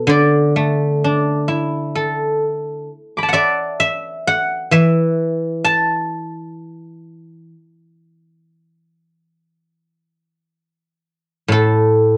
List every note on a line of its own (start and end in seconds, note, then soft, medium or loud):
0.00 1.34 A4 medium
0.00 1.13 B4 soft
0.07 2.87 D3 medium
0.07 3.30 D5 medium
0.56 2.42 A3 soft
1.04 2.89 D4 soft
1.48 3.34 E4 soft
1.96 3.81 A4 soft
3.17 4.53 B5 soft
3.17 4.39 D6 soft
3.23 4.68 A5 soft
3.29 4.27 F#5 medium
3.33 5.18 D5 medium
3.33 3.79 E5 medium
3.80 4.72 E5 medium
4.27 5.88 F#5 medium
4.71 7.52 E3 medium
4.71 6.44 E5 medium
5.64 10.46 A5 medium
11.48 12.17 A2 medium
11.48 12.17 A4 medium